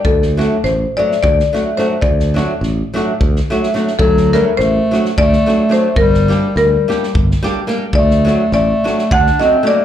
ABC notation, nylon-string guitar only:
X:1
M:7/8
L:1/8
Q:1/4=107
K:none
V:1 name="Nylon-string guitar"
z [^F,A,D^F] z [F,A,DF] z [F,A,DF] [F,A,DF] | z [^F,A,D^F] z [F,A,DF] z [F,A,DF] [F,A,DF] | z [^F,A,D^F] z [F,A,DF] z [F,A,DF] [F,A,DF] | z [G,_B,DG] z [G,B,DG] z [G,B,DG] [G,B,DG] |
z [^F,A,D^F] z [F,A,DF] z [F,A,DF] [F,A,DF] |]